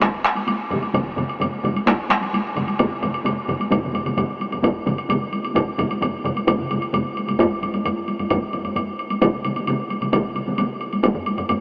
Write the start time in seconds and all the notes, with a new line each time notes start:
0.00 taiko rim, taiko, taiko high, high woodblock
0.25 taiko rim, high woodblock
0.35 taiko high, high woodblock
0.47 taiko high, high woodblock
0.70 taiko low-mid, taiko mid, taiko high, high woodblock
0.82 taiko high, high woodblock
0.94 taiko, taiko low-mid, taiko mid, taiko high, high woodblock
1.17 taiko low-mid, taiko mid, taiko high, high woodblock
1.29 high woodblock
1.40 taiko low-mid, taiko mid, taiko high, high woodblock
1.63 taiko low-mid, taiko mid, taiko high, high woodblock
1.75 taiko high, high woodblock
1.86 taiko rim, taiko, taiko high, high woodblock
2.09 taiko rim, taiko high, high woodblock
2.21 taiko high, high woodblock
2.33 taiko high, high woodblock
2.56 taiko low-mid, taiko mid, taiko high, high woodblock
2.68 taiko high, high woodblock
2.79 taiko, taiko low-mid, taiko mid, taiko high, high woodblock
3.02 taiko low-mid, taiko mid, taiko high, high woodblock
3.14 high woodblock
3.25 taiko low-mid, taiko mid, taiko high, high woodblock
3.48 taiko low-mid, taiko mid, taiko high, high woodblock
3.60 taiko high, high woodblock
3.71 taiko, taiko low-mid, taiko mid, taiko high, high woodblock
3.83 taiko low-mid, taiko mid
3.93 taiko low-mid, taiko mid, taiko high, high woodblock
4.06 taiko low-mid, taiko mid, taiko high, high woodblock
4.17 taiko low-mid, taiko mid, taiko high, high woodblock
4.40 taiko high, high woodblock
4.51 taiko low-mid, taiko mid, taiko high, high woodblock
4.63 taiko, taiko low-mid, taiko mid, taiko high, high woodblock
4.86 taiko low-mid, taiko mid, taiko high, high woodblock
4.98 high woodblock
5.09 taiko low-mid, taiko mid, taiko high, high woodblock
5.32 taiko high, high woodblock
5.44 taiko high, high woodblock
5.55 taiko, taiko low-mid, taiko mid, taiko high, high woodblock
5.78 taiko low-mid, taiko mid, taiko high, high woodblock
5.90 taiko high, high woodblock
6.02 taiko low-mid, taiko mid, taiko high, high woodblock
6.24 taiko low-mid, taiko mid, taiko high, high woodblock
6.36 taiko high, high woodblock
6.47 taiko, taiko low-mid, taiko mid, taiko high, high woodblock
6.59 taiko low-mid, taiko mid
6.70 taiko low-mid, taiko mid, taiko high, high woodblock
6.82 high woodblock
6.93 taiko low-mid, taiko mid, taiko high, high woodblock
7.16 taiko high, high woodblock
7.28 taiko low-mid, taiko mid, taiko high, high woodblock
7.39 taiko, taiko low-mid, taiko high, high woodblock
7.62 taiko low-mid, taiko high, high woodblock
7.74 taiko low-mid, taiko high, high woodblock
7.85 taiko low-mid, taiko high, high woodblock
8.08 taiko high, high woodblock
8.19 taiko low-mid, taiko high, high woodblock
8.30 taiko, taiko low-mid, taiko high, high woodblock
8.53 taiko low-mid, taiko high, high woodblock
8.64 taiko low-mid, taiko high, high woodblock
8.76 taiko low-mid, taiko high, high woodblock
8.99 high woodblock
9.10 taiko high, high woodblock
9.21 taiko, taiko mid, taiko high, high woodblock
9.45 taiko mid, taiko high, high woodblock
9.56 taiko mid, taiko high, high woodblock
9.67 taiko mid, taiko high, high woodblock
9.90 taiko high, high woodblock
10.01 taiko mid, taiko high, high woodblock
10.12 taiko, taiko mid, taiko high, high woodblock
10.35 taiko mid, taiko high, high woodblock
10.47 taiko mid, taiko high
10.58 taiko mid, taiko high, high woodblock
10.81 high woodblock
10.93 taiko high, high woodblock
11.04 taiko, taiko high, high woodblock
11.14 taiko low-mid
11.26 taiko high, high woodblock
11.38 taiko low-mid, taiko high, high woodblock
11.49 taiko low-mid, taiko high, high woodblock